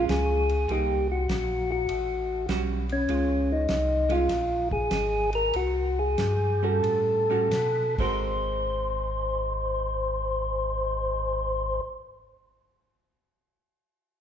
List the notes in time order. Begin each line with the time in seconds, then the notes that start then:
Already playing: G#3 C#4 F4
0.08 C#2 G#4, snare, hi-hat pedal, ride
0.49 ride
0.68 C2 G3 A#3 D#4 G4, ride
1.12 F#4
1.28 A#1, snare, hi-hat pedal, ride
1.72 F#4
1.89 A1, ride
2.48 B1 G3 C#4 F#4, snare, hi-hat pedal, ride
2.89 C#4, ride
3.08 C#2 G#3 F4, ride
3.52 D#4
3.69 C2, snare, hi-hat pedal, ride
4.09 G#3 C#4 F4, ride
4.29 A#1, snare, ride
4.71 G#4, kick
4.91 G#1, snare, hi-hat pedal, ride
5.33 A#4, ride
5.53 C2 F#4, ride
5.99 G#4
6.18 G2, snare, hi-hat pedal, ride
6.63 G3 C#4 F#4 A4
6.83 A2, ride
7.30 G3 C#4 F#4
7.51 B2, snare, hi-hat pedal, ride
7.98 G#1 G#3 C4 F#4 A#4 C5, kick, crash